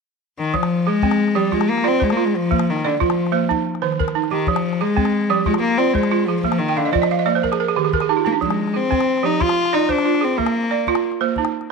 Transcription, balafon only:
0.54 F3
0.87 G#4
1.03 C4
1.35 F3 G4
1.52 F4
1.84 F4 D5
2.00 C5
2.17 F4
2.51 A#3
2.85 D5
3.00 F4
3.32 A#3 C5
3.49 D#4
3.82 D#3 C5
4.00 A#4
4.15 D#4
4.31 G4
4.48 F3
4.81 G#4
4.97 C4
5.30 F3 G4
5.46 F4
5.79 F4 D5
5.95 C5
6.12 F4
6.28 G#4
6.44 A#3
6.68 G5
6.77 F5
6.85 D#5
6.93 F4 D5
7.02 D#5
7.11 F5
7.19 D#5
7.26 A#3 D5
7.35 C5
7.43 A#4
7.52 G#4
7.60 A#4
7.68 G#4
7.76 D#3 G4
7.85 G#4
7.94 A#4
8.02 G#4
8.09 D#4 G4
8.17 F4
8.25 D#4
8.32 D4
8.41 F3
8.74 G#4
8.91 C4
9.23 F3 G4
9.40 F4
9.73 F4 D5
9.89 C5
10.05 F4
10.21 G#4
10.38 A#3
10.71 D5
10.88 F4
11.21 A#3 C5
11.38 D#4

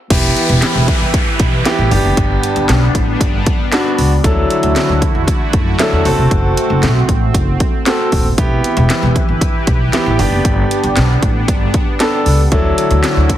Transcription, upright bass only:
0.10 E1
0.49 E1
0.75 E1
1.01 G1
1.40 B1
1.79 A1
1.92 G1
2.04 F#1
2.17 G1
2.56 G1
2.69 B1
2.95 A1
3.21 G1
3.98 C#2
4.24 D2
4.63 D2
4.89 D2
5.15 E2
5.53 F#2
5.92 E2
6.05 F#1
6.18 F1
6.31 F#1
6.70 F#1
6.83 B1
7.09 A1
7.34 F#1
8.12 D#1
8.38 E1
8.77 E1
9.03 E1
9.29 G1
9.67 B1
10.06 A1
10.19 G1
10.32 F#1
10.45 G1
10.84 G1
10.97 B1
11.22 A1
11.48 G1
12.26 C#2
12.52 D2
12.91 D2
13.17 D2

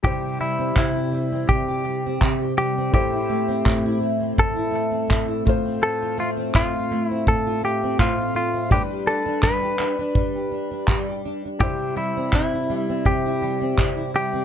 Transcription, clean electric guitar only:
0.05 G4
0.41 E4
0.78 E4
1.49 G4
2.58 G4
2.94 G4
4.39 A4
5.83 A4
6.20 F4
6.56 F4
7.07 E4
7.28 A4
7.65 G4
8.00 F4
8.36 F4
8.72 G4
9.07 A4
9.44 B4
11.61 G4
11.97 E4
12.35 E4
13.06 G4
14.16 G4

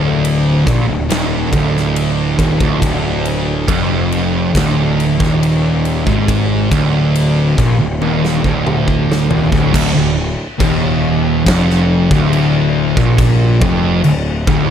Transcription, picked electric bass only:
Already playing: D1
0.67 A#1
0.88 D1
1.10 D#1
1.52 D1
2.39 D#1
2.60 D1
2.82 D1
3.69 F1
4.55 D1
5.20 D#1
6.07 G#1
6.71 D1
7.58 A#1
7.80 D1
8.01 D#1
8.44 D1
9.31 D#1
9.52 D1
9.74 D1
9.96 D1
10.60 D#1
11.47 F1
12.11 D1
12.97 A#1
13.61 F1
14.05 D1
14.47 D1

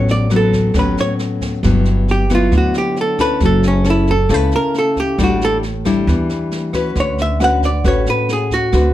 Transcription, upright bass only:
Already playing: A1
0.75 A1
1.63 G1
2.52 D2
3.41 F#1
4.30 C#2
5.18 A1
6.08 E2
6.95 D2
7.84 A1
8.73 D2

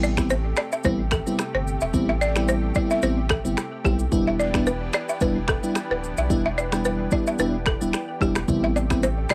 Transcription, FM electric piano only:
Already playing: G3 B3 C4 E4
0.18 G3 B3 C4 E4
0.84 G3 B3 C4 E4
1.27 G3 B3 C4 E4
1.93 G3 B3 C4 E4
2.36 G3 B3 C4 E4
2.76 G3 B3 C4 E4
3.03 G3 B3 C4 E4
3.45 G3 B3 C4 E4
3.84 G3 B3 C4 E4
4.12 G3 B3 D4 E4
4.54 G3 B3 D4 E4
5.21 G3 B3 D4 E4
5.63 G3 B3 D4 E4
6.30 G3 B3 D4 E4
6.72 G3 B3 D4 E4
7.12 G3 B3 D4 E4
7.39 G3 B3 D4 E4
7.81 G3 B3 D4 E4
8.21 G3 B3 D4 E4
8.48 G3 B3 C4 E4
8.90 G3 B3 C4 E4

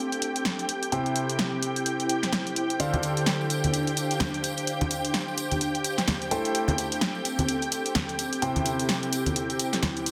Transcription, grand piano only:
Already playing: A3 E4 A4 C5 G5
0.92 C3 E4 G4 C5 G5
2.80 D3 D4 A4 C5 F5
6.31 A3 E4 A4 C5 G5
8.42 C3 E4 G4 C5 G5

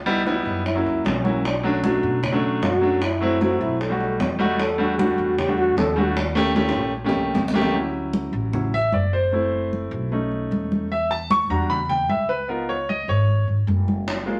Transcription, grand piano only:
0.06 G3 B3 D#4 E4
0.26 G3 B3 D#4 E4
0.75 F#3 A#3 C#4 E4
1.24 F#3 A#3 C#4 E4
1.63 F#3 A3 C#4 D4
1.83 F#3 A3 C#4 D4
2.32 F#3 A3 C#4 D4
2.81 F#3 A3 C#4 D4
3.21 F#3 A3 C4 E4
3.40 F#3 A3 C4 E4
3.90 G3 A3 D#4 F#4
4.39 G3 A3 D#4 F#4
4.78 G3 A3 D4 F#4
4.98 G3 A3 D4 F#4
5.47 G3 A3 D4 F#4
5.96 G3 A3 D4 F#4
6.35 A3 A#3 C#4 G4
6.55 A3 A#3 C#4 G4
7.04 A3 A#3 C#4 G4
7.54 A3 A#3 C#4 G4
7.74 F#3 C#4 E4
8.54 F#3 C#4 E4
8.74 E5
8.94 D5
9.13 C5
9.32 A3 C4 E4
10.12 A3 C#4 D#4
10.92 E5
11.11 A5
11.31 C#6
11.50 G3 D4 F#4 A#5
11.70 B5
11.89 G5
12.10 E5
12.29 B4
12.48 B3 D#4 F4 A#4
12.69 C#5
12.89 D#5
13.09 C#5
14.26 G#3 A#3 F4

